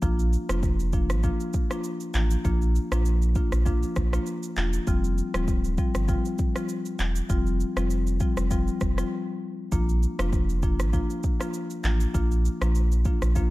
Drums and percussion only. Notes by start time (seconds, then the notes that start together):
0.02 kick, shaker
0.19 shaker
0.33 shaker
0.49 cross-stick, shaker
0.63 kick, shaker
0.80 shaker
0.93 kick, shaker
1.10 cross-stick, shaker
1.23 kick, shaker
1.40 shaker
1.53 kick, shaker
1.71 cross-stick, shaker
1.84 shaker
2.00 shaker
2.14 clap, shaker
2.31 shaker
2.45 kick, shaker
2.62 shaker
2.75 shaker
2.92 cross-stick, shaker
3.05 shaker
3.22 shaker
3.35 kick, shaker
3.52 cross-stick, shaker
3.66 kick, shaker
3.83 shaker
3.96 kick, cross-stick, shaker
4.13 cross-stick, shaker
4.26 shaker
4.43 shaker
4.56 clap, shaker
4.73 shaker
4.87 kick, shaker
5.04 shaker
5.18 shaker
5.34 cross-stick, shaker
5.48 kick, shaker
5.64 shaker
5.78 kick, shaker
5.95 cross-stick, shaker
6.08 kick, shaker
6.25 shaker
6.38 kick, shaker
6.56 cross-stick, shaker
6.69 shaker
6.85 shaker
6.99 clap, shaker
7.16 shaker
7.30 kick, shaker
7.47 shaker
7.60 shaker
7.77 cross-stick, shaker
7.90 shaker
8.07 shaker
8.20 kick, shaker
8.37 cross-stick, shaker
8.51 kick, shaker
8.68 shaker
8.81 kick, cross-stick, shaker
8.98 cross-stick, shaker
9.72 kick, shaker
9.89 shaker
10.03 shaker
10.19 cross-stick, shaker
10.33 kick, shaker
10.49 shaker
10.63 kick, shaker
10.80 cross-stick, shaker
10.93 kick, shaker
11.10 shaker
11.23 kick, shaker
11.41 cross-stick, shaker
11.54 shaker
11.70 shaker
11.84 clap, shaker
12.00 shaker
12.15 kick, shaker
12.31 shaker
12.45 shaker
12.62 cross-stick, shaker
12.75 shaker
12.92 shaker
13.05 kick, shaker
13.22 cross-stick, shaker
13.36 kick, shaker